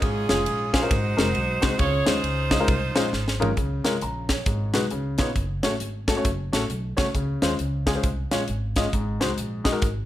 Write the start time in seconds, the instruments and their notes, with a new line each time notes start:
0.01 upright bass G#1, grand piano G#2, saxophone section C#4 F4 G#4, kick, ride
0.29 upright bass F1, grand piano C#4 F4 G#4, snare, ride
0.46 upright bass A#1, ride
0.73 grand piano C#4 F4 G#4, saxophone section D#4 F#4 C5, kick, snare, ride
0.82 grand piano C#4 F4 A#4
0.90 upright bass G#1, grand piano G#2, kick, ride
1.17 upright bass F1, grand piano G#3 C4 D#4 F#4 A#4, snare, ride
1.35 upright bass B1, ride
1.62 upright bass C2, grand piano G#3 C4 D#4 F#4 C5, kick, snare, ride
1.78 upright bass C#2, grand piano C#3, saxophone section F4 G#4 C#5, kick, ride
2.06 grand piano G#3 C#4 D#4 F4 C5, saxophone section D#4 F4 C5, snare, ride
2.23 upright bass C#2, ride
2.51 grand piano G#3 C#4 D#4 F4 D#5, kick, snare, ride
2.60 grand piano G#3 C#4 D#4 F4 A#4
2.68 upright bass C2, kick, ride
2.95 upright bass A#1, grand piano G#3 C#4 D#4 F4 C5, snare, ride
3.12 upright bass G#1, snare
3.28 snare
3.40 grand piano G#3 C#4 D#4 F4 A#4, floor tom
3.57 upright bass C#2, grand piano C#3, kick, closed hi-hat
3.84 grand piano G#3 C#4 F4 A#4, snare, closed hi-hat
4.01 upright bass A#1, grand piano A#5, closed hi-hat
4.29 grand piano C#5, kick, snare, closed hi-hat
4.46 upright bass G#1, grand piano G#2, kick, closed hi-hat
4.73 upright bass B1, grand piano G#3 D#4 F#4 B4, snare, closed hi-hat
4.90 upright bass C#2, grand piano C#3, closed hi-hat
5.18 upright bass A#2, grand piano B3 D#4 F4 C#5, kick, snare, closed hi-hat
5.36 upright bass F#1, kick, closed hi-hat
5.63 grand piano A3 C#4 F#4 C#5, snare, closed hi-hat
5.80 upright bass G#1, closed hi-hat
6.08 grand piano A3 C#4 F#4 A4, kick, snare, closed hi-hat
6.16 grand piano A3 C#4 F#4 C#5
6.25 upright bass F#1, kick, closed hi-hat
6.52 upright bass A1, grand piano A3 C#4 F#4 A4, snare, closed hi-hat
6.69 upright bass B1, closed hi-hat
6.97 upright bass C2, grand piano A3 C#4 F#4 C#5, kick, snare, closed hi-hat
7.14 upright bass C#2, grand piano C#3, kick, closed hi-hat
7.42 upright bass D#2, grand piano G#3 C#4 F4 C5, snare, closed hi-hat
7.59 upright bass C#2, closed hi-hat
7.86 grand piano G#3 C#4 F4 G#4, kick, snare, closed hi-hat
7.95 grand piano G#3 C#4 F4 C5
8.03 upright bass C2, kick, closed hi-hat
8.31 upright bass A#1, grand piano G#3 C#4 F4 C#5, snare, closed hi-hat
8.48 upright bass G#1, closed hi-hat
8.76 grand piano G#3 C#4 F4 D#5, kick, snare, closed hi-hat
8.93 upright bass G#1, grand piano G#2, kick, closed hi-hat
9.20 upright bass C2, grand piano G#3 D#4 F#4 C5, snare, closed hi-hat
9.38 upright bass A#1, closed hi-hat
9.64 grand piano G#3 D#4 F#4 D#5, kick, snare, closed hi-hat
9.72 grand piano G#3 D#4 F#4 A#4
9.82 upright bass G#1, kick, closed hi-hat